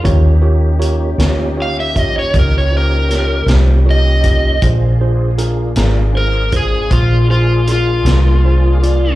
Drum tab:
HH |x-xx-xx-xx-x|x-xx-xx-xx-x|
SD |---o----oo--|---o-----o--|
BD |o----oo----o|o----oo-----|